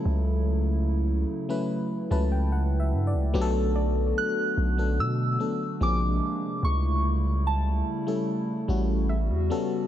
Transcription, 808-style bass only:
X:1
M:4/4
L:1/16
Q:1/4=73
K:Bm
V:1 name="808-style bass" clef=bass
C,,6 z4 C,,4 G,, C,, | B,,,4 z2 B,,,2 B,,2 z2 ^A,,,2 z2 | C,,6 z4 A,,,3 E,, z2 |]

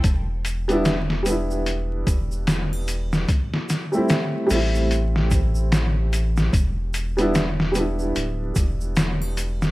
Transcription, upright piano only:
X:1
M:4/4
L:1/16
Q:"Swing 16ths" 1/4=74
K:Em
V:1 name="Upright piano"
z3 [G,B,DE] z2 [G,B,DE]8- [G,B,DE]2 | z3 [G,A,CE]3 [G,A,CE]8- [G,A,CE]2 | z3 [G,B,DE] z2 [G,B,DE]8- [G,B,DE]2 |]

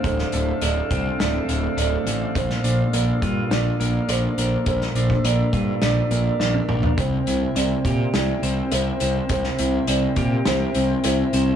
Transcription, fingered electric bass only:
X:1
M:4/4
L:1/8
Q:1/4=104
K:Bblyd
V:1 name="Fingered electric bass" clef=bass
D,,, D,,, D,,, C,, D,,, D,,, D,,, A,,, | B,,, B,,, B,,, G,, B,,, B,,, B,,, B,,, | B,,, B,,, B,,, G,, B,,, B,,, B,,, B,,, | C,, C,, C,, B,, C,, C,, C,, C,, |
C,, C,, C,, B,, C,, C,, C,, C,, |]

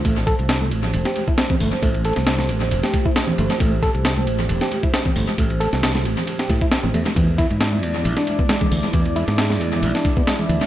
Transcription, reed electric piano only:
X:1
M:4/4
L:1/16
Q:"Swing 16ths" 1/4=135
K:Am
V:1 name="Reed electric piano"
A, z A z6 G2 E C C A, z | A, z A z6 G2 E C C A, z | A, z A z6 G2 E C C A, z | A, z A z6 G2 E C C A, z |
E, z E z6 D2 B, ^G, G, E, z | E, z E z6 D2 B, ^G, G, E, z |]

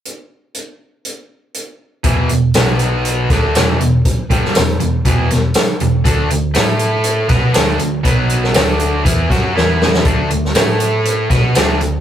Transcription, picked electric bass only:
X:1
M:4/4
L:1/8
Q:1/4=120
K:Dlyd
V:1 name="Picked electric bass" clef=bass
z8 | E,,, E,,, B,,,3 D,, E,,, E,,, | z =G,,, E,,, E,,, E,,, E,,, z E,,, | D,, D,, A,,3 B,, D,, D,, |
B,,,2 D,,2 E,, F,, E,,2 | D,, D,, A,,3 B,, D,, D,, |]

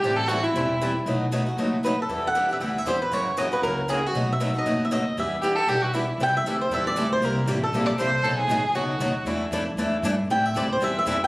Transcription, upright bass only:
X:1
M:4/4
L:1/8
Q:"Swing" 1/4=234
K:Em
V:1 name="Upright bass" clef=bass
A,,,4 E,,,4 | B,,,4 F,,,4 | E,,4 D,,2 E,,2 | F,,4 ^C,,4 |
B,,,4 F,,,4 | E,,4 B,,,4 | [K:Am] C,, z D,,2 E,,2 D,,2 | C,,2 A,,,2 _B,,,2 C,,2 |
B,,,2 A,,, z ^C,,2 ^D,, z | E,,2 F,,2 E,,2 G,,2 | A,,2 D,,2 E,,2 F,,2 |]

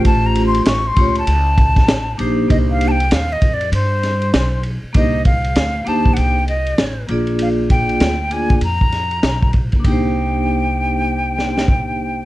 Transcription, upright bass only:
X:1
M:4/4
L:1/16
Q:"Swing 16ths" 1/4=98
K:Cdor
V:1 name="Upright bass" clef=bass
A,,,4 A,,,2 ^C,,2 C,,4 A,,,2 B,,,2 | C,,4 E,,2 F,,2 G,,4 =B,,,3 z | C,,4 D,,2 E,,2 C,,4 A,,,2 B,,,2- | B,,,4 D,,4 F,,4 =B,,,3 z |
C,,16 |]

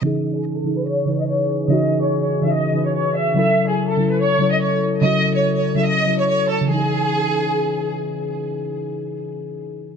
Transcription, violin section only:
X:1
M:4/4
L:1/16
Q:1/4=144
K:C#m
V:1 name="Violin section"
d3 G2 A2 B c3 d c2 z2 | d3 c2 c2 e d3 c c2 e2 | e3 G2 A2 B c3 d c2 z2 | d3 c2 c2 e d3 c c2 A2 |
G12 z4 | z16 |]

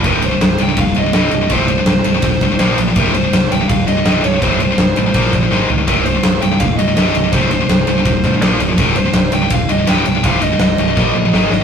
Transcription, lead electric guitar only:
X:1
M:4/4
L:1/8
Q:1/4=165
K:Cm
V:1 name="Lead electric guitar"
B c2 g f e e2 | c c6 z | B c2 g f e e _d | c c6 z |
B c2 g f e e2 | c c6 z | B c2 g f e g2 | f e6 e |]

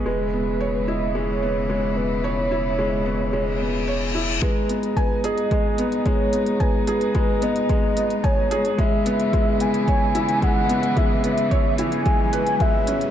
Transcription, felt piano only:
X:1
M:4/4
L:1/8
Q:1/4=110
K:G#m
V:1 name="Felt piano"
G, B, c E G, B, G, B, | c E G, B, G, B, c E | G, B, g G G, B, G, B, | g G G, B, G, B, g G |
G, B, G, B, c E G, B, | G, B, c E G, B G, C |]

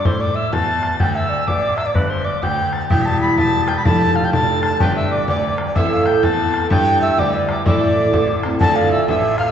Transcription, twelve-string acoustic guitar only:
X:1
M:2/4
L:1/8
Q:"Swing" 1/4=126
K:Am
V:1 name="Twelve-string acoustic guitar"
z4 | z4 | z4 | [E,G,EGB]2 [G,EGB] [EGB] |
[F,A,DFA]2 [A,DFA]2 | [G,DGB]2 [G,DGB]2 | [A,,E,A,CEA]2 [A,CEA]2 | [G,DGB]2 [G,DGB]2 |
[A,,E,A,CEA]2 [A,CEA] [A,CEA] | [D,A,DFA]2 [A,DFA]2 |]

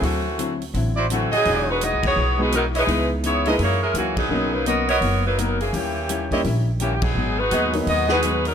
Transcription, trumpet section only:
X:1
M:4/4
L:1/8
Q:"Swing" 1/4=168
K:G#m
V:1 name="Trumpet section"
z4 z [EF=c=d] z [FG^d]- | [FGd]2 z4 z [EBcd] | z3 [EGAd] z4 | z3 [FABd] z4 |
z3 [E=Gcd] z4 | z2 [FGBd]3 [FGBf] z2 |]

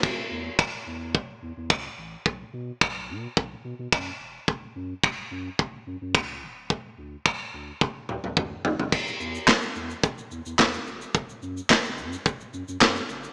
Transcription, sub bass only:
X:1
M:4/4
L:1/16
Q:1/4=108
K:F#m
V:1 name="Sub bass" clef=bass
E,,,2 E,,2 E,,,2 E,,2 E,,,2 E,, E,, C,,2 A,,,2 | B,,,2 B,,2 B,,,2 B,,2 B,,,2 B,, B,, F,,2 E,,,2 | F,,,2 F,,2 F,,,2 F,,2 F,,,2 F,, F,, C,,2 D,,,2- | D,,,2 D,,2 D,,,2 D,,2 D,,,2 D,, D,, D,,2 D,,,2 |
E,,,2 E,,2 E,,,2 E,,2 E,,,2 E,, E,, E,,2 E,,,2 | F,,,2 F,,2 F,,,2 F,,2 F,,,2 F,, F,, F,,2 F,,,2 |]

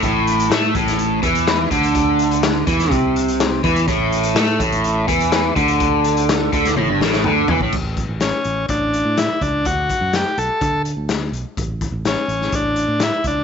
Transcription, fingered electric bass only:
X:1
M:4/4
L:1/16
Q:1/4=125
K:D
V:1 name="Fingered electric bass" clef=bass
A,,,4 A,,2 A,,,4 E,,4 D,,2- | D,,6 E,,2 =C,,6 E,,2 | A,,,4 A,,2 A,,,4 E,,4 D,,2- | D,,6 D,,2 A,,, G,,, A,,,2 D,,2 E,, A,,, |
A,,,3 A,,,2 z A,,,2 A,,,3 A,,2 z C,,2 | D,,2 z F,,2 z B,,, z D,3 D,,3 B,,, z | A,,,3 A,,,2 z A,,,2 A,,,3 A,,2 z C,,2 |]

